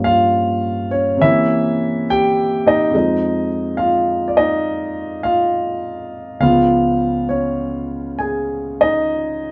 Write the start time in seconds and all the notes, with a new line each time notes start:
Already playing: G2 F3 A#3 C#4
0.04 F4 F5
0.91 C#4 C#5
1.17 C3 A#3 C#4
1.21 E3 E4 E5
2.10 G4 G5
2.67 D#4 D#5
2.90 F2 F3 G#3
2.96 D#4
3.77 F4 F5
4.28 D5
4.37 D#4 D#5
5.23 F4 F5
6.40 C#2 C#3 F3 B3 F4 F5
7.29 C#4 C#5
8.19 G#4 G#5
8.81 D#4 D#5